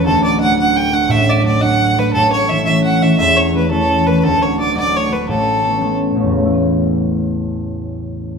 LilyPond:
<<
  \new Staff \with { instrumentName = "Fiddle" } { \time 6/8 \key a \major \tempo 4. = 114 a'8 d''8 fis''8 fis''8 g''8 fis''8 | e''8 d''8 d''8 fis''4 b'8 | a'8 cis''8 e''8 e''8 fis''8 e''8 | e''8 cis''8 b'8 a'4 b'16. b'32 |
a'8 cis''8 d''8 d''8 cis''8 b'8 | a'2 r4 | r2. | r2. | }
  \new Staff \with { instrumentName = "Harp" } { \time 6/8 \key a \major <d,, d,>4 <fis a d'>8 <fis a d'>4 <fis a d'>8 | <a,, a,>4 <fis a d'>8 <fis a d'>4 <fis a d'>8 | <a,, a,>4 <e a cis'>8 <e a cis'>4 <e a cis'>8 | <e,, e,>4 <e a cis'>8 <e a cis'>4 <e a cis'>8 |
<d,, d,>4 <fis a d'>8 <fis a d'>4 <fis a d'>8 | <a,, a,>4 <a b cis'>8 <a b cis'>4 <a b cis'>8 | <a,, e, cis a e' b'>2.~ | <a,, e, cis a e' b'>2. | }
>>